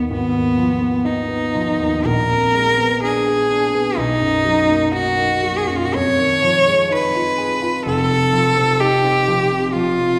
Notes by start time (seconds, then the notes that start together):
Already playing: D#2 D#3 B3 D#4
0.10 G#1 B3
0.34 D#2
0.57 F3
0.81 B3
1.05 D#4
1.28 B3
1.55 F3
1.79 D#2
2.05 A#1 A#4
2.30 F2
2.54 G#3
2.78 B3
3.03 D4 G#4
3.27 G#4
3.50 D4
3.74 B3
3.97 B1 D#4
4.21 F#2
4.45 F#3
4.68 A#3
4.92 D#4 F#4
5.17 A#3
5.43 F#3
5.58 G#4
5.68 F#2 F#4
5.77 F4
5.85 F#4
5.94 F2 C#5
6.18 D#3
6.42 F3
6.66 G#3
6.90 D#4 B4
7.15 F4
7.38 G#4
7.62 F4
7.86 F1 F2 A4
8.11 C3
8.33 F3
8.57 C4
8.80 D#4 G4
9.04 C4
9.28 F3
9.51 C3
9.73 F3 F4
10.00 C3